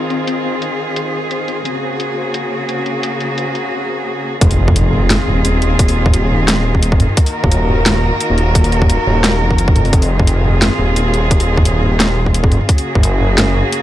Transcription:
0.00 1.61 D#3 medium
0.00 1.63 C4 medium
0.00 3.72 C4 medium
0.00 1.63 F4 medium
0.00 4.37 G#4 medium
0.00 3.72 C5 medium
0.10 closed hi-hat soft
0.27 closed hi-hat medium
0.62 closed hi-hat medium
0.96 closed hi-hat medium
1.31 closed hi-hat medium
1.48 closed hi-hat soft
1.65 4.39 C#3 medium
1.65 4.39 A#3 medium
1.65 4.39 F#4 medium
1.65 closed hi-hat medium
2.00 closed hi-hat medium
2.34 closed hi-hat medium
2.69 closed hi-hat medium
2.86 closed hi-hat soft
3.03 closed hi-hat medium
3.20 closed hi-hat soft
3.38 closed hi-hat medium
3.55 closed hi-hat soft
4.41 5.18 F1 loud
4.41 12.65 D#3 medium
4.41 7.15 C4 medium
4.41 7.15 F4 medium
4.41 7.15 G#4 medium
4.41 kick loud
4.41 closed hi-hat medium
4.41 impact medium
4.51 open hi-hat medium
4.68 kick loud
4.68 mid tom medium
4.76 closed hi-hat medium
4.93 mid tom medium
5.10 snare loud
5.10 closed hi-hat medium
5.10 mid tom medium
5.28 6.93 D#1 loud
5.28 mid tom soft
5.45 closed hi-hat medium
5.62 closed hi-hat soft
5.79 kick loud
5.79 closed hi-hat medium
5.88 open hi-hat medium
6.06 kick loud
6.06 mid tom medium
6.14 closed hi-hat medium
6.31 mid tom medium
6.48 snare loud
6.48 closed hi-hat medium
6.75 kick medium
6.83 closed hi-hat medium
6.92 7.08 F1 loud
6.92 kick loud
7.00 closed hi-hat soft
7.00 mid tom medium
7.09 mid tom medium
7.17 9.90 A#3 medium
7.17 9.90 F#4 medium
7.17 9.90 A#4 medium
7.17 kick loud
7.17 closed hi-hat medium
7.26 open hi-hat medium
7.44 7.85 D#1 medium
7.44 kick loud
7.44 mid tom medium
7.52 closed hi-hat medium
7.69 mid tom medium
7.86 8.12 D#1 medium
7.86 snare loud
7.86 closed hi-hat medium
7.86 mid tom medium
8.03 mid tom soft
8.08 mid tom soft
8.12 mid tom soft
8.16 mid tom soft
8.20 closed hi-hat medium
8.30 8.98 D#1 loud
8.38 closed hi-hat soft
8.55 kick loud
8.55 closed hi-hat medium
8.64 open hi-hat medium
8.72 closed hi-hat soft
8.82 kick loud
8.82 mid tom medium
8.90 closed hi-hat medium
9.07 9.43 D#1 loud
9.07 mid tom medium
9.24 snare loud
9.24 closed hi-hat medium
9.41 9.92 F1 medium
9.51 kick medium
9.58 closed hi-hat medium
9.68 kick loud
9.76 closed hi-hat soft
9.76 mid tom medium
9.85 mid tom soft
9.85 open hi-hat soft
9.93 10.70 F1 loud
9.93 12.66 C4 medium
9.93 12.66 F4 medium
9.93 12.66 G#4 medium
9.93 kick loud
9.93 closed hi-hat medium
10.02 open hi-hat medium
10.19 kick loud
10.19 mid tom medium
10.27 closed hi-hat medium
10.45 mid tom medium
10.62 snare loud
10.62 closed hi-hat medium
10.62 mid tom medium
10.79 12.45 D#1 loud
10.79 mid tom soft
10.96 closed hi-hat medium
11.14 closed hi-hat soft
11.31 kick loud
11.31 closed hi-hat medium
11.40 open hi-hat medium
11.57 kick loud
11.57 mid tom medium
11.65 closed hi-hat medium
11.83 mid tom medium
12.00 snare loud
12.00 closed hi-hat medium
12.26 kick medium
12.34 closed hi-hat medium
12.44 12.59 F1 loud
12.44 kick loud
12.52 closed hi-hat soft
12.52 mid tom medium
12.61 mid tom medium
12.69 13.82 C#3 medium
12.69 13.82 A#3 medium
12.69 13.82 F#4 medium
12.69 13.82 G#4 medium
12.69 kick loud
12.69 closed hi-hat medium
12.78 open hi-hat medium
12.95 13.37 F#1 loud
12.95 kick loud
12.95 mid tom medium
13.03 closed hi-hat medium
13.21 mid tom medium
13.38 13.63 F#1 medium
13.38 snare loud
13.38 closed hi-hat medium
13.38 mid tom medium
13.55 mid tom soft
13.72 closed hi-hat medium

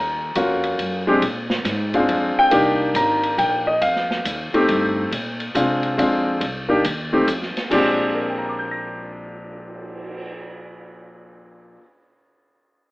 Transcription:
0.00 0.34 D#2 medium
0.00 1.44 A#5 medium
0.35 0.78 F2 medium
0.35 1.02 A#3 medium
0.35 1.02 C#4 soft
0.35 1.02 F4 medium
0.35 1.02 F#4 medium
0.35 kick soft
0.35 hi-hat pedal medium
0.35 ride medium
0.64 ride soft
0.79 1.21 F#2 medium
0.79 kick soft
0.79 ride medium
1.07 1.21 G#3 medium
1.07 1.21 C4 medium
1.07 1.21 D4 medium
1.07 1.21 G4 medium
1.22 1.64 A#2 medium
1.22 kick soft
1.22 ride medium
1.50 snare medium
1.65 2.07 G#2 medium
1.65 kick soft
1.65 snare soft
1.65 hi-hat pedal soft
1.65 ride medium
1.94 2.49 G#3 medium
1.94 2.49 C4 medium
1.94 2.49 D4 medium
1.94 2.50 F4 medium
1.94 kick medium
1.94 ride soft
2.09 2.35 F2 medium
2.09 kick soft
2.09 ride medium
2.36 2.92 G5 loud
2.36 muted upright bass stroke soft
2.51 2.93 C2 medium
2.51 3.72 A#3 medium
2.51 3.72 D4 medium
2.51 3.73 D#4 medium
2.51 3.73 G4 medium
2.51 kick soft
2.51 ride medium
2.94 3.37 G#1 medium
2.94 3.36 A#5 medium
2.94 kick soft
2.94 hi-hat pedal medium
2.94 ride medium
3.23 ride soft
3.38 3.80 A#1 medium
3.38 3.67 G5 medium
3.38 kick soft
3.38 ride medium
3.67 3.81 D#5 medium
3.81 4.24 F2 medium
3.81 7.23 F5 medium
3.81 kick soft
3.81 ride medium
3.96 snare soft
4.11 snare medium
4.25 4.51 D#2 medium
4.25 kick soft
4.25 hi-hat pedal medium
4.25 ride medium
4.53 5.09 A3 medium
4.53 5.09 C4 medium
4.53 5.09 D#4 medium
4.53 5.09 G4 medium
4.53 muted upright bass stroke soft
4.53 ride soft
4.68 5.10 G2 loud
4.68 kick soft
4.68 ride medium
5.11 5.53 A#2 medium
5.11 kick soft
5.11 ride medium
5.40 ride soft
5.55 5.97 C3 medium
5.55 5.96 G#3 medium
5.55 5.96 C4 medium
5.55 5.97 D4 medium
5.55 5.97 F4 medium
5.55 kick soft
5.55 hi-hat pedal medium
5.55 ride medium
5.83 ride soft
5.98 6.40 F2 medium
5.98 6.41 G#3 medium
5.98 6.41 C4 medium
5.98 6.41 D4 medium
5.98 6.42 F4 medium
5.98 kick soft
5.98 ride medium
6.41 6.83 C2 medium
6.41 kick soft
6.41 ride medium
6.69 6.82 A#3 medium
6.69 6.83 D4 medium
6.69 6.83 D#4 medium
6.69 6.83 G4 medium
6.84 7.26 D#2 medium
6.84 kick soft
6.84 hi-hat pedal medium
6.84 ride medium
7.13 7.26 A3 medium
7.13 7.26 C4 medium
7.13 7.26 D#4 medium
7.13 7.26 G4 medium
7.27 7.53 F2 medium
7.27 kick soft
7.27 hi-hat pedal medium
7.27 ride medium
7.42 snare soft
7.56 muted upright bass stroke soft
7.56 snare soft
7.56 ride soft
7.70 11.76 A#1 medium
7.70 11.79 A#2 medium
7.70 11.80 G#3 medium
7.70 11.80 C4 medium
7.70 11.80 D4 medium
7.70 11.81 G4 medium
7.70 8.20 D5 medium
7.70 kick medium
7.70 crash medium
8.00 cymbal swell soft
8.14 11.76 A#4 soft
8.21 11.79 D5 soft
8.30 11.84 G5 soft
8.39 11.88 A#5 soft
8.49 11.93 D6 soft
8.59 11.98 G6 soft
8.71 12.04 A#6 soft

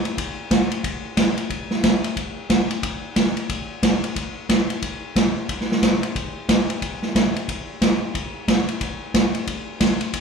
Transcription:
0.05 ride medium
0.18 kick soft
0.18 ride medium
0.51 kick soft
0.51 snare medium
0.51 hi-hat pedal medium
0.51 ride medium
0.71 ride medium
0.84 kick soft
0.84 ride medium
1.17 kick soft
1.17 snare medium
1.17 hi-hat pedal medium
1.17 ride medium
1.37 ride soft
1.50 kick soft
1.50 ride medium
1.71 snare soft
1.83 kick soft
1.83 snare medium
1.83 hi-hat pedal medium
1.83 ride medium
2.04 ride medium
2.17 kick soft
2.17 ride medium
2.50 kick soft
2.50 snare medium
2.50 hi-hat pedal medium
2.50 ride medium
2.71 ride medium
2.83 kick soft
2.83 ride medium
3.16 kick soft
3.16 snare medium
3.16 hi-hat pedal medium
3.16 ride medium
3.37 ride medium
3.49 kick soft
3.49 ride medium
3.83 kick soft
3.83 snare medium
3.83 hi-hat pedal medium
3.83 ride medium
4.04 ride medium
4.16 kick soft
4.16 ride medium
4.49 kick soft
4.49 snare medium
4.49 hi-hat pedal medium
4.49 ride medium
4.70 ride medium
4.82 kick soft
4.82 ride medium
5.16 kick soft
5.16 snare medium
5.16 hi-hat pedal medium
5.16 ride medium
5.49 kick soft
5.49 ride medium
5.61 snare soft
5.72 snare soft
5.82 kick soft
5.82 snare medium
5.82 hi-hat pedal medium
5.82 ride medium
6.03 ride medium
6.15 kick soft
6.15 ride medium
6.49 kick soft
6.49 snare medium
6.49 hi-hat pedal medium
6.49 ride medium
6.70 ride medium
6.82 kick soft
6.82 ride medium
7.02 snare soft
7.15 kick soft
7.15 snare medium
7.15 hi-hat pedal medium
7.15 ride medium
7.36 ride medium
7.48 kick soft
7.48 ride medium
7.81 kick soft
7.81 snare medium
7.81 hi-hat pedal medium
7.81 ride medium
8.15 kick soft
8.15 ride medium
8.48 kick soft
8.48 snare medium
8.48 hi-hat pedal medium
8.48 ride medium
8.68 ride medium
8.81 kick soft
8.81 ride medium
9.14 kick soft
9.14 snare medium
9.14 hi-hat pedal medium
9.14 ride medium
9.35 ride medium
9.47 kick soft
9.47 ride medium
9.80 kick soft
9.80 snare medium
9.80 hi-hat pedal medium
9.80 ride medium
10.01 ride medium
10.13 kick soft
10.13 ride medium

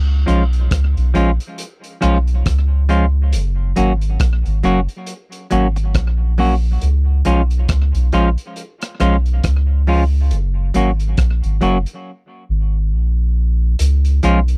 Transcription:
0.00 0.25 C#2 medium
0.26 0.69 B1 medium
0.26 0.42 F3 medium
0.26 0.42 G#3 medium
0.26 0.43 C#4 medium
0.26 0.43 F4 medium
0.26 closed hi-hat medium
0.53 closed hi-hat soft
0.71 0.95 C#2 medium
0.71 kick medium
0.71 cross-stick loud
0.71 closed hi-hat medium
0.97 1.14 B1 medium
0.97 closed hi-hat soft
1.14 1.39 A#1 medium
1.14 1.29 F3 medium
1.14 1.30 G#3 medium
1.14 1.30 C#4 medium
1.14 1.30 F4 medium
1.14 closed hi-hat medium
1.40 closed hi-hat soft
1.58 closed hi-hat medium
1.84 closed hi-hat medium
2.01 2.43 B1 loud
2.01 2.16 F3 medium
2.01 2.17 G#3 medium
2.01 2.17 C#4 medium
2.01 2.17 F4 loud
2.01 cross-stick medium
2.01 closed hi-hat medium
2.27 closed hi-hat soft
2.46 3.35 C#2 medium
2.46 kick medium
2.46 cross-stick medium
2.46 closed hi-hat medium
2.89 3.04 F3 medium
2.89 3.04 G#3 medium
2.89 3.05 C#4 medium
2.89 3.05 F4 medium
2.89 closed hi-hat medium
3.33 3.74 F#1 medium
3.33 closed hi-hat loud
3.76 4.18 G#1 loud
3.76 3.91 F#3 medium
3.76 3.92 A#3 medium
3.76 3.92 C#4 medium
3.76 3.92 F#4 medium
3.76 closed hi-hat medium
4.01 closed hi-hat soft
4.20 4.44 A#1 medium
4.20 kick loud
4.20 cross-stick medium
4.20 closed hi-hat medium
4.46 4.63 G#1 medium
4.46 closed hi-hat medium
4.63 4.88 F#1 loud
4.63 4.79 F#3 medium
4.63 4.79 A#3 medium
4.63 4.79 C#4 medium
4.63 4.79 F#4 loud
4.63 closed hi-hat medium
4.89 closed hi-hat medium
5.06 closed hi-hat medium
5.32 closed hi-hat medium
5.51 5.97 G#1 loud
5.51 5.66 F#3 medium
5.51 5.66 A#3 medium
5.51 5.67 C#4 medium
5.51 5.67 F#4 medium
5.51 closed hi-hat medium
5.76 muted clean electric guitar stroke soft
5.76 closed hi-hat soft
5.94 6.78 A#1 medium
5.94 kick medium
5.94 cross-stick medium
5.94 closed hi-hat medium
6.38 6.53 F#3 medium
6.38 6.54 A#3 medium
6.38 6.54 C#4 medium
6.38 6.54 F#4 medium
6.38 open hi-hat medium
6.81 7.23 C#2 medium
6.81 closed hi-hat medium
7.25 7.66 B1 medium
7.25 7.40 F3 medium
7.25 7.41 G#3 medium
7.25 7.41 C#4 medium
7.25 7.41 F4 medium
7.25 closed hi-hat medium
7.50 closed hi-hat soft
7.68 7.93 C#2 medium
7.68 kick loud
7.68 cross-stick medium
7.68 closed hi-hat medium
7.95 8.11 B1 medium
7.95 closed hi-hat medium
8.12 8.36 A#1 medium
8.12 8.28 F3 loud
8.12 8.28 G#3 medium
8.12 8.28 C#4 medium
8.12 8.28 F4 loud
8.12 closed hi-hat medium
8.38 closed hi-hat medium
8.56 closed hi-hat medium
8.81 cross-stick medium
8.81 closed hi-hat medium
9.00 9.41 B1 loud
9.00 9.15 F3 medium
9.00 9.15 G#3 medium
9.00 9.15 C#4 medium
9.00 9.16 F4 loud
9.00 cross-stick medium
9.00 closed hi-hat medium
9.26 closed hi-hat soft
9.44 10.33 C#2 medium
9.44 kick medium
9.44 cross-stick loud
9.44 closed hi-hat loud
9.87 10.02 F3 medium
9.87 10.03 G#3 medium
9.87 10.03 C#4 medium
9.87 10.03 F4 medium
9.87 open hi-hat medium
10.31 10.72 F#1 medium
10.31 closed hi-hat loud
10.74 11.15 G#1 loud
10.74 10.89 F#3 medium
10.74 10.90 A#3 medium
10.74 10.90 C#4 medium
10.74 10.90 F#4 medium
10.74 closed hi-hat medium
11.00 closed hi-hat soft
11.17 11.42 A#1 medium
11.17 kick loud
11.17 cross-stick medium
11.17 closed hi-hat medium
11.44 11.61 G#1 medium
11.44 closed hi-hat soft
11.61 11.86 F#1 loud
11.61 11.76 F#3 medium
11.61 11.77 A#3 medium
11.61 11.77 C#4 medium
11.61 11.77 F#4 medium
11.61 closed hi-hat medium
11.86 closed hi-hat medium
12.49 12.94 G#1 medium
12.93 13.75 A#1 medium
13.79 14.20 C#2 loud
13.79 closed hi-hat loud
14.05 closed hi-hat medium
14.23 14.57 B1 loud
14.23 14.38 F3 medium
14.23 14.38 G#3 loud
14.23 14.39 C#4 medium
14.23 14.39 F4 loud
14.23 closed hi-hat medium
14.48 closed hi-hat medium

